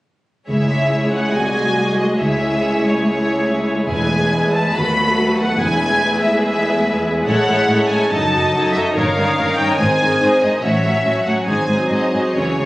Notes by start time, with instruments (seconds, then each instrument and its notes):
0.49 double bass section C#2, cello section C#2, french horn section G#3 G#4, viola section G#3 E4, violin section G#4 C#5 E5
1.13 violin section F#5
1.34 double bass section C2, cello section C2, viola section F#4, french horn section F#4, violin section D#5 G#5
1.98 violin section D#5
2.20 cello section C#2, double bass section C#2, viola section E4, french horn section E4, violin section C#5 E5
2.86 violin section C#5
3.04 violin section C#5
3.89 double bass section E1, cello section E2, french horn section G#3 B3, viola section G#3, violin section G#4 B4 G#5
4.54 violin section A5
4.75 cello section D#2, double bass section D#2, viola section F#3 F#4, french horn section A3, violin section A4 B5
5.39 violin section F#5
5.59 double bass section E1, cello section E2, viola section G#3 E4, french horn section G#3, violin section G#4 G#5
6.22 violin section E5
6.44 violin section E5
7.25 double bass section A1, cello section A2, viola section G#3 E4, french horn section C#4, violin section A4 C#5 F#5
7.48 cello section A2, viola section G#3 E4, violin section A4 C#5
7.69 cello section A2, viola section G#3 E4, violin section A4 C#5
7.89 cello section A2, viola section G#3 E4, violin section A4 C#5 G#5
8.10 double bass section F#1, cello section F#2, viola section F#3 D#4, french horn section F#3 D#4, violin section A4 D#5 A5
8.31 cello section F#2, viola section F#3 D#4, violin section A4 D#5
8.53 cello section F#2, viola section F#3 D#4, violin section A4 D#5
8.73 cello section F#2, viola section F#3 D#4, violin section A4 D#5 E5
8.94 double bass section G1, cello section G2, viola section D#3 D#4, french horn section D#3 C#4, violin section A#4 C#5 F5
9.16 cello section G2, viola section D#3 D#4, violin section A#4 C#5
9.37 cello section G2, viola section D#3 D#4, violin section A#4 C#5
9.57 cello section G2, viola section D#3 D#4, violin section A#4 C#5 G5
9.77 double bass section G#1, cello section G#2, viola section D#3 D#4, french horn section C4, violin section G#4 C5 G#5
10.00 cello section G#2, viola section D#3 D#4, violin section G#4 C5
10.20 cello section G#2, viola section D#3 D#4, violin section G#4 C5
10.41 cello section G#2, viola section D#3 D#4, violin section G#4 C5 D#5
10.61 double bass section A1, cello section A2, french horn section F#3 C#4, viola section F#3 C#4, violin section F#4 C#5 E5
10.82 cello section A2, viola section F#3 C#4, violin section F#4 C#5
11.04 cello section A2, viola section F#3 C#4, violin section F#4 C#5
11.25 cello section A2, viola section F#3 C#4, violin section F#4 C#5 F#5
11.45 double bass section G#1, cello section G#2, viola section F#3 D#4, french horn section C4, violin section G#4 C5 G#5
11.68 cello section G#2, viola section F#3 D#4, violin section G#4 C5
11.90 cello section G#2, viola section F#3 D#4, violin section G#4 C5 D#5
12.13 cello section G#2, viola section F#3 D#4, violin section G#4 C5
12.34 double bass section C#2, cello section C#3, viola section E3 C#4, french horn section C#4, violin section G#4 C#5
12.58 cello section C#3, viola section E3 C#4, violin section G#4 C#5